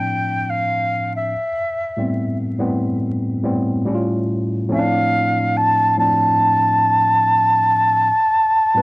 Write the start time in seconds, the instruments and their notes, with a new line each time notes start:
Already playing: tine electric piano A2 F3 C4 D4, flute G5
0.50 flute F5
1.16 flute E5
1.97 tine electric piano A2 G3 B3 C4
2.58 tine electric piano A2 G3 B3 C4
3.43 tine electric piano A2 G3 B3 C4
3.85 tine electric piano A2 G3 C#4 E4
3.95 tine electric piano F4
4.69 tine electric piano A2 F3 C4 C#4, flute F5
4.79 tine electric piano D4
5.57 flute A5
5.97 tine electric piano A2 F3 C4 D4, flute A5
8.74 tine electric piano A2 G3 C4 B4